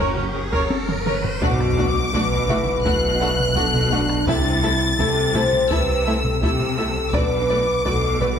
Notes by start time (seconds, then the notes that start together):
Already playing: F#1 F#3 C#4 A#4 F#5, riser
0.00 A#4 C#5
0.17 F#1 A#4 C#5
0.34 F#1 A#4 C#5
0.52 F#1 A#4 C#5, taiko
0.70 taiko high
0.88 F#1 A#4 C#5, taiko mid
1.05 F#1 A#4 C#5, taiko mid
1.24 taiko low
1.41 B1 B2 A3 D4 F#4 F#5 D6, taiko, sub drop
1.60 taiko rim
1.77 A3 D4 F#4 F#5
2.13 B1 B2 A3 D4 F#4 B4 F#5, taiko
2.49 A3 D4 E4 F#4 E5 F#5, taiko low-mid
2.67 taiko low-mid
2.85 B1 B2 A3 D4 F#4 F#5 F#6, taiko
3.21 A3 D4 F#4 F#5
3.39 taiko low-mid
3.56 B1 B2 A3 D4 F#4 A4 F#5, taiko
3.74 taiko low-mid
3.91 A3 D4 F#4 F#5
4.10 taiko rim
4.27 C2 C3 A3 E4 A4 E5 A6, taiko
4.63 A3 E4 A4 E5
4.99 C2 C3 A3 E4 A4 E5, taiko
5.34 A3 E4 A4 C5 E5, taiko low-mid
5.53 taiko low-mid
5.70 C2 C3 A3 E4 A4 B4 E5 E6, taiko
6.06 A3 E4 A4 E5
6.24 taiko low-mid
6.41 C2 C3 A3 E4 G4 A4 E5 E6, taiko
6.59 taiko low-mid
6.77 A3 E4 A4 E5
7.13 B1 B2 A3 D4 F#4 B4 D5 D6, taiko
7.49 A3 F#4 B4 D5
7.85 B1 B2 A3 F#4 A4 B4 D5, taiko
8.20 G3 A3 F#4 B4 D5, taiko low-mid